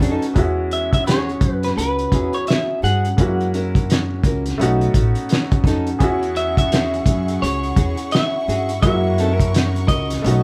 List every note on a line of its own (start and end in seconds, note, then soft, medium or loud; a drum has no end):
0.00 0.18 F2 medium
0.00 0.32 A3 medium
0.00 0.33 B3 medium
0.00 0.33 C#4 medium
0.00 0.24 C#4 medium
0.00 0.34 D#4 medium
0.00 0.24 D#4 medium
0.00 0.34 F#4 medium
0.00 0.25 A4 medium
0.00 0.34 B4 medium
0.00 0.34 D#5 medium
0.00 0.34 A5 medium
0.00 0.34 C#6 medium
0.00 closed hi-hat medium
0.22 closed hi-hat soft
0.34 1.38 E2 medium
0.34 2.08 G#3 medium
0.34 2.08 B3 medium
0.34 2.09 C#4 medium
0.34 2.09 E4 medium
0.34 kick loud
0.34 closed hi-hat medium
0.39 2.10 F#4 medium
0.71 0.92 E5 medium
0.71 closed hi-hat medium
0.93 1.07 E5 medium
0.93 kick medium
0.93 closed hi-hat medium
1.06 1.30 C#4 medium
1.06 1.30 F#4 medium
1.06 1.30 G#4 medium
1.06 1.53 C#5 medium
1.06 snare loud
1.06 closed hi-hat medium
1.29 closed hi-hat soft
1.41 1.70 F#2 medium
1.41 kick medium
1.41 closed hi-hat medium
1.53 1.65 B4 medium
1.63 1.70 B4 medium
1.63 snare soft
1.63 closed hi-hat soft
1.77 2.06 C#2 medium
1.77 2.36 B4 medium
1.77 closed hi-hat medium
1.99 closed hi-hat soft
2.12 2.30 E2 medium
2.12 3.18 F#3 soft
2.12 3.18 B3 soft
2.12 2.31 C#4 medium
2.12 3.18 C#4 soft
2.12 3.19 E4 soft
2.12 2.31 F#4 medium
2.12 2.31 G#4 medium
2.12 3.19 G#4 soft
2.12 kick medium
2.12 closed hi-hat medium
2.33 2.48 C#5 medium
2.33 closed hi-hat soft
2.47 2.84 E5 medium
2.47 muted nylon-string guitar stroke soft
2.47 snare loud
2.47 closed hi-hat medium
2.82 3.12 G2 medium
2.82 3.05 C#4 medium
2.82 3.06 F#4 medium
2.82 3.06 G#4 medium
2.82 4.91 F#5 medium
2.82 closed hi-hat medium
3.05 closed hi-hat soft
3.17 4.20 F#2 medium
3.17 4.56 G#3 medium
3.17 4.56 A#3 soft
3.17 4.57 C#4 medium
3.17 4.57 E4 soft
3.17 kick medium
3.17 closed hi-hat medium
3.22 4.58 F#4 medium
3.41 closed hi-hat soft
3.54 3.87 C#4 medium
3.54 3.87 E4 medium
3.54 3.87 A#4 medium
3.54 closed hi-hat medium
3.75 kick medium
3.75 closed hi-hat soft
3.90 snare loud
3.90 closed hi-hat medium
4.24 4.53 C#2 medium
4.24 4.43 C#4 medium
4.24 4.43 E4 medium
4.24 4.43 A#4 medium
4.24 kick medium
4.24 closed hi-hat medium
4.46 snare soft
4.46 closed hi-hat soft
4.58 4.88 B1 medium
4.58 5.97 A3 medium
4.58 5.97 B3 medium
4.58 5.98 C#4 medium
4.58 5.99 D#4 medium
4.58 closed hi-hat medium
4.62 5.99 F#4 medium
4.81 closed hi-hat soft
4.94 5.12 A1 medium
4.94 kick medium
4.94 closed hi-hat medium
5.15 closed hi-hat soft
5.29 muted nylon-string guitar stroke soft
5.29 snare loud
5.29 closed hi-hat medium
5.52 kick medium
5.52 closed hi-hat soft
5.64 5.94 F2 medium
5.64 5.88 C#4 medium
5.64 5.89 D#4 medium
5.64 5.89 A4 medium
5.64 kick medium
5.64 snare soft
5.64 closed hi-hat medium
5.87 closed hi-hat soft
5.99 7.02 E2 loud
5.99 8.78 B3 medium
5.99 8.79 C#4 medium
5.99 10.19 E4 medium
5.99 8.80 E4 medium
5.99 8.78 G#4 medium
5.99 8.79 G#4 medium
5.99 10.19 F#5 medium
5.99 10.43 C#6 medium
5.99 kick medium
5.99 closed hi-hat medium
6.04 8.80 F#4 medium
6.23 closed hi-hat soft
6.36 6.57 E5 loud
6.36 closed hi-hat medium
6.57 7.42 E5 loud
6.57 kick medium
6.57 closed hi-hat medium
6.72 6.94 C#4 medium
6.72 6.94 F#4 medium
6.72 6.94 G#4 loud
6.72 snare loud
6.72 closed hi-hat medium
6.94 closed hi-hat soft
7.06 7.35 F#2 medium
7.06 kick loud
7.06 closed hi-hat medium
7.28 closed hi-hat soft
7.42 7.71 C#2 medium
7.42 8.12 C#5 medium
7.42 closed hi-hat medium
7.63 closed hi-hat soft
7.76 7.95 E2 loud
7.76 7.95 C#4 medium
7.76 7.96 F#4 medium
7.76 7.96 G#4 medium
7.76 kick medium
7.76 closed hi-hat medium
7.97 closed hi-hat soft
8.11 8.81 E5 loud
8.11 muted nylon-string guitar stroke soft
8.11 snare loud
8.11 closed hi-hat medium
8.48 8.77 G2 medium
8.48 8.70 C#4 medium
8.48 8.71 F#4 medium
8.48 8.71 G#4 medium
8.48 closed hi-hat medium
8.69 closed hi-hat soft
8.82 9.85 F#2 loud
8.82 10.20 G#3 medium
8.82 10.21 A#3 medium
8.82 10.22 C#4 medium
8.82 10.22 E4 medium
8.82 10.22 A#4 medium
8.82 9.88 E5 medium
8.82 kick loud
8.82 closed hi-hat medium
8.87 10.23 F#4 medium
9.18 9.32 C4 medium
9.18 9.32 D#4 medium
9.18 9.33 A4 medium
9.18 closed hi-hat medium
9.32 9.51 C#4 medium
9.32 9.52 E4 medium
9.32 9.52 A#4 medium
9.40 kick medium
9.40 closed hi-hat medium
9.54 snare loud
9.54 closed hi-hat medium
9.76 closed hi-hat soft
9.88 10.17 C#2 medium
9.88 10.07 C#4 medium
9.88 10.07 E4 medium
9.88 10.08 A#4 medium
9.88 10.43 D#5 medium
9.88 kick medium
9.88 closed hi-hat medium
10.10 snare soft
10.10 closed hi-hat medium
10.22 10.43 B1 loud
10.22 10.43 A3 medium
10.22 10.43 B3 medium
10.22 10.43 C#4 medium
10.22 10.43 D#4 medium
10.22 10.43 B4 medium
10.22 10.43 D#5 medium
10.22 10.43 A5 medium
10.22 closed hi-hat medium
10.27 10.43 F#4 medium